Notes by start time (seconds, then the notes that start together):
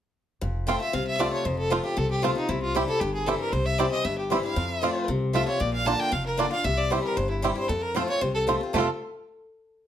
0.41 F1 F2
0.67 F3 A3 C4 F4 G5
0.80 C4 F4 E5
0.93 C2 C3 F5
1.07 E5
1.18 F3 A3 C4 F4 D5
1.33 C#5
1.45 F1 F2 C5
1.58 A4
1.70 F3 A3 C4 F4
1.84 C4 F4 G4
1.97 C2 C3 A4
2.10 G4
2.22 F3 A3 C4 F4
2.35 C4 D#4 F4
2.49 C2 C3 E4
2.62 F4
2.75 E3 G3 C4 E4 G4
2.88 C4 E4 A4
3.01 G1 G2 G4
3.14 G#4
3.26 E3 G3 C4 E4 G4 A4
3.40 A#4
3.52 C2 C3 C5
3.65 E5
3.78 E3 G3 C4 E4 G4 D5
3.91 D#5
4.04 G1 G2 E5
4.18 G4
4.30 E3 G3 C4 E4 G4 C5
4.43 C4 E4 F5
4.56 F2
4.81 F3 A3 C4 F4
5.08 C2 C3
5.33 F3 A3 C4 F4 E5
5.47 C4 F4 C#5
5.60 A#1 A#2 D5
5.73 F5
5.85 D3 A#3 D4 F4 A5
6.00 G5
6.12 F1 F2 F5
6.26 A#4
6.37 D3 A#3 D4 F4 D5
6.51 D4 F4 F5
6.64 C2 C3 E5
6.78 D5
6.90 E3 G3 C4 E4 G4 C5
7.04 A#4
7.17 G1 G2 C5
7.30 E4
7.42 E3 G3 C4 E4 G4
7.55 C4 E4 C5
7.68 F2 A4
7.82 A#4
7.94 F3 A3 C4 F4 C5
8.08 C4 F4 C#5
8.21 C2 C3 C5
8.34 A4
8.47 F3 A3 C4 F4
8.61 C4 F4
8.73 F1 F2 C3 F3 A3 C4 F4 A4
8.78 F4 A4